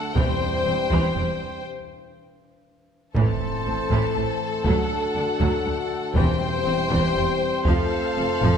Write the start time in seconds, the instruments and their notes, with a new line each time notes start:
Already playing: trombone section D3 A3, violin section A4 F#5
0.14 double bass section E1, timpani E2, cello section E2, trombone section E3 G3, viola section E3, french horn section C4 G4, trumpet section C5, violin section C5 G5, taiko
0.66 double bass section E1, cello section E2, viola section C4
0.91 double bass section E1, cello section E2, viola section E3, taiko
1.16 double bass section E1, cello section E2, viola section G3
3.15 double bass section A1, cello section A2, trombone section E3 A3, viola section E3, french horn section C4 A4, violin section A4 A5, trumpet section C5, taiko, impact
3.66 double bass section A1, cello section A2, viola section C4
3.90 double bass section A1, cello section A2, viola section E3, taiko
4.16 double bass section A1, cello section A2, viola section A3
4.64 cello section D2, double bass section D2, trombone section D3, viola section F#3, french horn section D4 F#4, trumpet section A4, violin section F#5, taiko
5.15 cello section D2, double bass section D2, viola section D4
5.40 cello section D2, double bass section D2, viola section F#3, taiko
5.65 cello section D2, double bass section D2, viola section A3
6.15 double bass section E1, cello section E2, timpani E2, viola section E3, trombone section E3 G3, french horn section C4 G4, violin section C5 G5, trumpet section C5, taiko
6.66 double bass section E1, cello section E2, viola section C4
6.91 double bass section E1, cello section E2, viola section E3, taiko
7.15 double bass section E1, cello section E2, viola section G3
7.65 double bass section F1, cello section F2, viola section F3, trombone section F3 A3, french horn section F4, violin section A4 F5, taiko
8.17 double bass section F1, cello section F2, viola section C4
8.41 double bass section F1, cello section F2, viola section F3, taiko low-mid